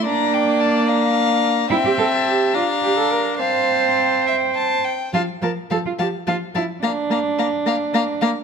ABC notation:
X:1
M:6/8
L:1/16
Q:3/8=72
K:F
V:1 name="Violin"
b2 g2 a2 b6 | g3 a3 b6 | a6 g4- g z | a2 a2 a2 a2 a2 a2 |
b2 b2 b2 b2 b2 b2 |]
V:2 name="Violin"
d6 f6 | e6 f6 | f6 e2 a2 g2 | f2 f2 f2 f2 f2 f2 |
f2 f2 f2 f2 f2 f2 |]
V:3 name="Cello"
D8- D2 z2 | E G A2 G2 F2 G A B2 | c8- c2 z2 | F2 B2 A F G2 F2 E2 |
D8- D2 z2 |]
V:4 name="Viola"
B,12 | C6 D6 | C8- C2 z2 | F,2 F,2 F,2 F,2 F,2 F,2 |
B,2 B,2 B,2 B,2 B,2 B,2 |]